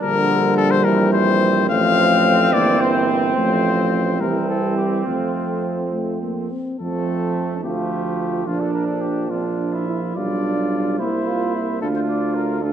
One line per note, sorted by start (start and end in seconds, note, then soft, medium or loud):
0.00 1.72 A#1 medium
0.00 0.87 D3 medium
0.00 1.66 G3 medium
0.00 0.57 D4 loud
0.00 0.53 A#4 loud
0.56 0.72 A4 loud
0.71 0.86 C5 loud
0.84 1.69 E3 medium
0.84 4.17 C4 medium
0.84 1.12 A#4 loud
1.12 1.68 C5 loud
1.69 2.55 A1 medium
1.69 2.54 F3 medium
1.69 2.55 A3 medium
1.69 2.55 F5 loud
2.53 3.36 G1 medium
2.53 3.36 E3 medium
2.53 3.35 A#3 medium
2.53 2.82 D5 loud
2.81 3.35 C5 medium
3.36 4.23 A1 medium
3.36 4.22 F3 medium
3.36 4.22 A3 medium
3.36 4.22 C5 medium
4.20 5.07 C2 medium
4.20 5.06 E3 medium
4.20 5.06 G3 medium
4.20 6.48 C4 medium
4.20 4.49 A#4 medium
4.49 4.76 A4 medium
4.77 5.08 G4 medium
5.06 6.49 F2 soft
5.06 6.49 F3 medium
5.06 5.86 A3 soft
5.06 5.93 F4 medium
5.94 6.20 A3 medium
6.23 6.53 A#3 medium
6.52 6.80 C4 soft
6.80 7.65 F2 soft
6.80 7.47 F3 soft
6.80 7.60 A3 medium
6.80 7.66 C4 medium
6.80 7.59 A4 medium
7.64 8.48 D2 soft
7.64 8.45 F3 soft
7.64 8.46 A3 soft
7.64 8.47 F4 medium
7.64 8.48 G4 medium
8.47 10.16 A#1 soft
8.47 9.29 F3 soft
8.47 9.29 D4 soft
8.47 8.62 F4 medium
8.61 8.73 A4 medium
8.74 8.87 A#4 medium
8.88 9.02 A4 medium
9.01 9.31 G4 medium
9.30 10.18 F3 soft
9.30 9.44 C4 soft
9.30 9.74 D4 soft
9.30 10.15 F4 medium
9.59 9.87 D4 soft
9.73 10.18 E4 soft
9.88 10.01 E4 soft
10.15 11.01 B1 soft
10.15 10.57 G3 soft
10.15 11.01 D4 medium
10.15 11.01 F4 soft
10.15 10.97 D5 medium
10.58 11.01 G3 soft
10.99 11.83 C2 soft
10.99 11.82 A#3 soft
10.99 11.29 E4 soft
10.99 11.81 E4 soft
10.99 11.80 C5 medium
11.27 11.56 F4 medium
11.55 11.81 E4 soft
11.81 12.73 D2 medium
11.81 12.61 A3 soft
11.81 12.61 D4 medium
11.81 12.61 F4 medium
11.81 11.87 A4 medium
11.95 12.01 C5 medium
12.08 12.36 D5 medium
12.35 12.64 A#4 medium
12.62 12.73 A3 soft
12.62 12.73 D4 soft
12.62 12.73 F4 soft
12.62 12.73 A4 medium